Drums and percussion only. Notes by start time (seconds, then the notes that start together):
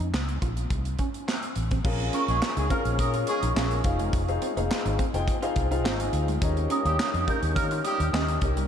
0.00 closed hi-hat
0.14 snare, clap
0.29 closed hi-hat
0.42 kick, closed hi-hat
0.57 closed hi-hat
0.70 kick, closed hi-hat
0.85 closed hi-hat
0.99 kick, closed hi-hat
1.14 closed hi-hat
1.29 snare, clap
1.43 closed hi-hat
1.56 closed hi-hat
1.71 kick, closed hi-hat
1.85 kick, crash
2.00 closed hi-hat
2.13 closed hi-hat
2.28 closed hi-hat
2.42 snare, clap
2.57 closed hi-hat
2.70 kick, closed hi-hat
2.85 closed hi-hat
2.99 kick, closed hi-hat
3.14 closed hi-hat
3.27 closed hi-hat
3.43 closed hi-hat
3.57 snare, clap
3.71 closed hi-hat
3.84 kick, closed hi-hat
3.99 closed hi-hat
4.13 kick, closed hi-hat
4.28 closed hi-hat
4.42 closed hi-hat
4.57 closed hi-hat
4.71 snare, clap
4.86 closed hi-hat
4.99 kick, closed hi-hat
5.14 closed hi-hat
5.28 kick, closed hi-hat
5.43 closed hi-hat
5.56 kick, closed hi-hat
5.72 closed hi-hat
5.86 snare, clap
6.00 closed hi-hat
6.13 closed hi-hat
6.28 closed hi-hat
6.42 kick, closed hi-hat
6.57 closed hi-hat
6.70 closed hi-hat
6.86 closed hi-hat
7.00 snare, clap
7.14 closed hi-hat
7.28 kick, closed hi-hat
7.43 closed hi-hat
7.56 kick, closed hi-hat
7.71 closed hi-hat
7.85 closed hi-hat
8.00 closed hi-hat
8.14 snare, clap
8.28 closed hi-hat
8.41 kick, closed hi-hat
8.57 closed hi-hat